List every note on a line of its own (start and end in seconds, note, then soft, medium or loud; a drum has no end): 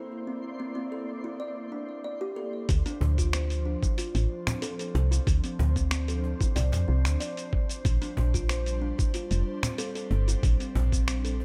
0.00 2.65 A#3 medium
0.00 2.70 C4 medium
0.00 0.26 E4 medium
0.00 2.65 E4 medium
0.00 2.70 C5 medium
0.11 2.66 D5 medium
0.27 0.42 C4 medium
0.60 0.74 C4 medium
0.75 0.91 C4 medium
0.92 1.23 A4 medium
1.24 1.38 E4 medium
1.40 1.56 D5 medium
1.72 1.87 D4 medium
2.04 2.20 D5 medium
2.21 2.36 G4 medium
2.36 2.53 A4 medium
2.69 2.82 D2 loud
2.69 7.81 F3 medium
2.69 11.45 D4 medium
2.69 11.45 C5 loud
2.69 kick loud
2.69 open hi-hat medium
2.69 shaker medium
2.86 3.00 D4 loud
2.86 open hi-hat soft
2.86 shaker soft
3.01 3.76 D2 medium
3.01 cajon bass loud
3.18 3.27 F4 medium
3.18 kick medium
3.18 open hi-hat soft
3.18 shaker medium
3.33 3.50 C5 medium
3.33 finger snap medium
3.33 open hi-hat medium
3.33 shaker medium
3.50 open hi-hat soft
3.50 shaker soft
3.65 3.82 D4 medium
3.82 3.96 E4 medium
3.82 kick loud
3.82 shaker medium
3.98 4.45 F4 medium
3.98 open hi-hat medium
3.98 shaker medium
4.15 4.27 A1 loud
4.15 open hi-hat soft
4.15 shaker soft
4.47 4.62 C4 medium
4.47 finger snap medium
4.47 cajon bass loud
4.47 open hi-hat soft
4.47 shaker medium
4.62 4.78 A4 loud
4.62 open hi-hat medium
4.62 shaker medium
4.79 5.10 A4 medium
4.79 open hi-hat soft
4.79 shaker soft
4.95 5.20 C2 loud
4.95 cajon slap medium
5.11 5.42 E4 medium
5.11 open hi-hat soft
5.11 shaker medium
5.27 5.40 D2 loud
5.27 kick loud
5.27 open hi-hat medium
5.27 shaker medium
5.44 5.58 C4 medium
5.44 open hi-hat soft
5.44 shaker soft
5.59 6.34 D2 medium
5.59 cajon bass medium
5.76 5.90 C4 medium
5.76 kick medium
5.76 open hi-hat soft
5.76 shaker medium
5.91 6.07 C4 medium
5.91 finger snap medium
5.91 open hi-hat medium
5.91 shaker medium
6.08 6.39 A4 medium
6.08 open hi-hat soft
6.08 shaker soft
6.24 cajon slap soft
6.41 6.55 E4 medium
6.41 kick loud
6.41 open hi-hat soft
6.41 shaker medium
6.56 6.74 C2 medium
6.56 6.72 D5 medium
6.56 cajon bass medium
6.56 open hi-hat medium
6.56 shaker medium
6.72 6.85 F2 medium
6.72 cajon bass medium
6.72 cajon slap medium
6.72 open hi-hat soft
6.72 shaker soft
6.88 7.07 C2 medium
6.88 7.19 C4 medium
7.05 7.17 D2 loud
7.05 finger snap medium
7.05 cajon slap medium
7.05 open hi-hat soft
7.05 shaker medium
7.20 7.83 D5 medium
7.20 open hi-hat medium
7.20 shaker medium
7.37 open hi-hat soft
7.37 shaker soft
7.53 kick loud
7.69 open hi-hat soft
7.69 shaker medium
7.85 7.98 A#1 loud
7.85 11.45 G3 medium
7.85 kick loud
7.85 open hi-hat medium
7.85 shaker medium
8.02 8.16 D4 loud
8.02 open hi-hat soft
8.02 shaker soft
8.17 8.93 A#1 medium
8.17 cajon bass loud
8.34 8.43 F4 medium
8.34 kick medium
8.34 open hi-hat soft
8.34 shaker medium
8.49 8.66 C5 medium
8.49 finger snap medium
8.49 open hi-hat medium
8.49 shaker medium
8.66 open hi-hat soft
8.66 shaker soft
8.82 8.98 D4 medium
8.98 9.12 E4 medium
8.98 kick loud
8.98 shaker medium
9.14 9.62 F4 medium
9.14 open hi-hat medium
9.14 shaker medium
9.31 9.43 F1 loud
9.31 open hi-hat soft
9.31 shaker soft
9.63 9.78 C4 medium
9.63 finger snap medium
9.63 cajon bass medium
9.63 open hi-hat soft
9.63 shaker medium
9.78 9.94 A4 loud
9.78 open hi-hat medium
9.78 shaker medium
9.95 10.26 A4 medium
9.95 open hi-hat soft
9.95 shaker soft
10.11 10.36 G1 loud
10.11 cajon slap medium
10.28 10.58 E4 medium
10.28 open hi-hat soft
10.28 shaker medium
10.43 10.56 A#1 loud
10.43 kick loud
10.43 open hi-hat medium
10.43 shaker medium
10.60 10.75 C4 medium
10.60 open hi-hat soft
10.60 shaker soft
10.75 11.45 A#1 medium
10.75 cajon bass loud
10.92 11.07 C4 medium
10.92 kick medium
10.92 open hi-hat soft
10.92 shaker medium
11.08 11.23 C4 medium
11.08 finger snap medium
11.08 open hi-hat medium
11.08 shaker medium
11.25 11.45 A4 medium
11.25 open hi-hat soft
11.25 shaker soft
11.40 cajon slap soft